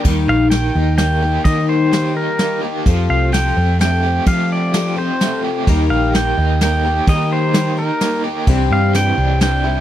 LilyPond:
<<
  \new Staff \with { instrumentName = "Pedal steel guitar" } { \time 3/4 \key ees \lydian \tempo 4 = 128 r8 f''8 g''4 g''4 | ees''8 c''4 bes'4 r8 | r8 f''8 g''4 g''4 | f''8 d''4 c''4 r8 |
r8 f''8 g''4 g''4 | ees''8 c''4 bes'4 r8 | r8 f''8 g''4 g''4 | }
  \new Staff \with { instrumentName = "Tonewheel organ" } { \time 3/4 \key ees \lydian r2. | r2. | r2. | r2. |
<ees' g' bes' ees''>2.~ | <ees' g' bes' ees''>2. | <e' g' c'' d''>2. | }
  \new Staff \with { instrumentName = "Twelve-string acoustic guitar" } { \time 3/4 \key ees \lydian <ees g bes ees' g'>4 <g bes ees' g'>8 <bes ees' g'>8 <g bes ees' g'>8 <bes ees' g'>8 | <ees g bes ees' g'>4 <g bes ees' g'>4 <g bes ees' g'>8 <bes ees' g'>8 | <f a c' f' g'>4 <a c' f' g'>4 <a c' f' g'>8 <c' f' g'>8 | <f a c' f' g'>4 <a c' f' g'>8 <c' f' g'>8 <a c' f' g'>4 |
<ees g bes g' bes'>4 <g bes g' bes'>4 <g bes g' bes'>8 <bes g' bes'>8 | <ees g bes g' bes'>4 <g bes g' bes'>8 <bes g' bes'>8 <g bes g' bes'>8 <bes g' bes'>8 | <c e g c' d' g'>4 <g c' d' g'>4 <g c' d' g'>8 <g c' d' g'>8 | }
  \new Staff \with { instrumentName = "Overdriven electric guitar" } { \time 3/4 \key ees \lydian ees4 ees8 ees'8 bes8 g'8 | ees4 ees8 ees'8 bes8 g'8 | f4 f8 c'8 a8 g'8 | f4 f8 c'8 a8 g'8 |
ees4 ees8 ees'8 bes8 g'8 | ees4 ees8 ees'8 bes8 g'8 | c4 e8 d'8 g8 e'8 | }
  \new Staff \with { instrumentName = "Fingered electric bass" } { \clef bass \time 3/4 \key ees \lydian ees,8 bes,,4 ees,4. | ees2 r4 | f,8 c,4 f,4. | f2 r4 |
ees,8 bes,,4 ees,4. | ees2 r4 | c,8 g,4 c,4. | }
  \new DrumStaff \with { instrumentName = "Drums" } \drummode { \time 3/4 <cymc bd>4 <cymr sn>4 <cymr sn>4 | <bd cymr>4 <cymr sn>4 <cymr sn>4 | <bd cymr>4 <cymr sn>4 <cymr sn>4 | <bd cymr>4 <cymr sn>4 <cymr sn>4 |
<bd cymr>4 <cymr sn>4 <cymr sn>4 | <bd cymr>4 <cymr sn>4 <cymr sn>4 | <bd cymr>4 <cymr sn>4 <cymr sn>4 | }
>>